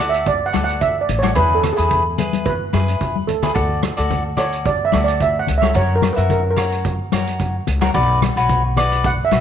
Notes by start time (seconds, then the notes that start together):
Already playing: D2 D5
0.00 F#4 A4
0.09 E5
0.14 closed hi-hat
0.26 D5, kick, closed hi-hat
0.46 F#5
0.53 D2 F#4 A4 D5, cross-stick, closed hi-hat, high conga
0.64 F#5
0.69 closed hi-hat
0.81 E5, kick, closed hi-hat
1.01 D5
1.09 A1, closed hi-hat, low conga
1.19 F#4 C#5
1.23 A4 D5, cross-stick, closed hi-hat, high conga
1.35 E2 E4 G#4 B4, kick, closed hi-hat
1.55 A4
1.63 cross-stick, closed hi-hat, low conga
1.73 E4 G#4
1.77 E2 G#4 B4, closed hi-hat
1.91 kick, closed hi-hat
2.18 E4 G#4 B4, closed hi-hat, high conga, low conga
2.33 closed hi-hat, high conga
2.45 B4, kick, closed hi-hat
2.73 F#2 E4 G#4 B4, cross-stick, closed hi-hat, high conga
2.88 closed hi-hat
3.01 E2, kick, closed hi-hat
3.16 high conga
3.27 D2 A4, closed hi-hat, low conga
3.43 E4 G#4 B4, cross-stick, closed hi-hat, low conga
3.54 D2 F#4 A4 D5, kick, closed hi-hat
3.83 cross-stick, closed hi-hat, high conga
3.97 D2 F#4 A4 D5, closed hi-hat
4.10 kick, closed hi-hat, low conga
4.37 F#4 A4 C#5 D5, cross-stick, closed hi-hat, low conga
4.52 closed hi-hat
4.66 D5, kick, closed hi-hat
4.85 E5
4.92 D2 F#4 A4 D5, cross-stick, closed hi-hat, high conga
5.04 D5, closed hi-hat
5.20 E5, kick, closed hi-hat
5.39 F#5
5.47 C#2, closed hi-hat, low conga
5.58 E5
5.62 F#4 A4 C#5, cross-stick, closed hi-hat, high conga
5.74 F#2 F#4 A#4 C#5, kick, closed hi-hat
5.96 A#4
6.02 cross-stick, closed hi-hat, high conga, low conga
6.13 A#4 B4 E5
6.17 F#2 F#4, closed hi-hat
6.29 A#4, kick, closed hi-hat, low conga
6.50 A#4
6.56 F#4 A#4 C#5, cross-stick, closed hi-hat, low conga
6.72 closed hi-hat
6.85 kick, closed hi-hat
7.12 F#2 F#4 A#4 C#5, cross-stick, closed hi-hat, high conga
7.27 closed hi-hat
7.40 kick, closed hi-hat
7.67 C#2, closed hi-hat, low conga
7.81 F#4 A#4 C#5, cross-stick, closed hi-hat, high conga
7.94 B1 F#4 B4 D5, kick, closed hi-hat
8.22 cross-stick, closed hi-hat, high conga, low conga
8.36 B1 F#4 B4 C#5, closed hi-hat
8.49 kick, closed hi-hat, low conga
8.77 F#4 B4 D5, cross-stick, closed hi-hat, low conga
8.92 closed hi-hat
9.04 F#5, kick, closed hi-hat
9.25 E5
9.31 B1 F#4 B4 E5, cross-stick, closed hi-hat, high conga